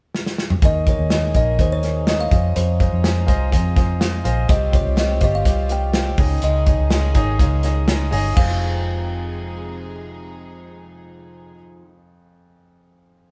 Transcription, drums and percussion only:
0.15 snare medium
0.26 snare medium
0.38 snare medium
0.50 mid tom medium
0.62 kick loud
0.62 closed hi-hat medium
0.87 kick medium
0.87 closed hi-hat medium
1.10 snare loud
1.10 closed hi-hat medium
1.34 kick medium
1.34 closed hi-hat medium
1.59 kick medium
1.59 closed hi-hat medium
1.83 snare soft
1.83 closed hi-hat soft
2.07 snare loud
2.07 closed hi-hat medium
2.31 kick medium
2.31 closed hi-hat medium
2.56 closed hi-hat medium
2.80 kick medium
2.80 closed hi-hat medium
3.04 snare loud
3.04 closed hi-hat medium
3.28 kick medium
3.28 closed hi-hat medium
3.52 kick medium
3.52 closed hi-hat medium
3.76 kick medium
3.76 snare soft
3.76 closed hi-hat medium
4.01 snare loud
4.01 closed hi-hat medium
4.25 closed hi-hat medium
4.49 kick loud
4.49 closed hi-hat medium
4.73 kick medium
4.73 closed hi-hat medium
4.97 snare loud
4.97 closed hi-hat medium
5.21 kick medium
5.21 closed hi-hat medium
5.45 kick medium
5.45 closed hi-hat medium
5.69 closed hi-hat medium
5.94 snare loud
5.94 closed hi-hat medium
6.18 kick loud
6.18 open hi-hat medium
6.42 closed hi-hat medium
6.66 kick medium
6.66 closed hi-hat medium
6.91 snare loud
6.91 closed hi-hat medium
7.15 kick medium
7.15 closed hi-hat medium
7.39 kick medium
7.39 closed hi-hat medium
7.63 snare soft
7.63 closed hi-hat medium
7.88 snare loud
7.88 closed hi-hat medium
8.12 open hi-hat medium
8.37 kick loud
8.37 crash medium

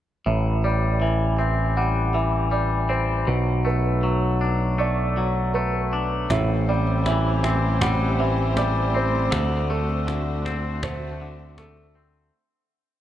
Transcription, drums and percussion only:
6.30 cajon bass medium
6.30 cajon slap medium
6.87 cajon slap soft
7.06 cajon slap medium
7.44 cajon slap medium
7.81 cajon bass medium
7.81 cajon slap medium
8.19 cajon slap soft
8.38 cajon slap soft
8.57 cajon slap medium
8.76 cajon slap soft
9.32 cajon bass medium
9.32 cajon slap medium
9.89 cajon slap soft
10.08 cajon slap medium
10.46 cajon slap medium
10.83 cajon bass medium
10.83 cajon slap medium
11.21 cajon slap soft
11.40 cajon slap soft
11.58 cajon slap medium
11.77 cajon slap soft

